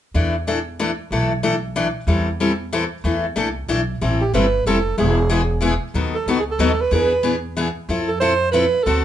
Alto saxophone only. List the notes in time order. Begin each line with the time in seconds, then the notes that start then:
4.21 G4
4.35 B4
4.67 A4
4.99 G#4
6.15 A4
6.30 F#4
6.40 G#4
6.51 A4
6.81 B4
6.94 B4
8.08 A4
8.20 C5
8.52 B4
8.84 A4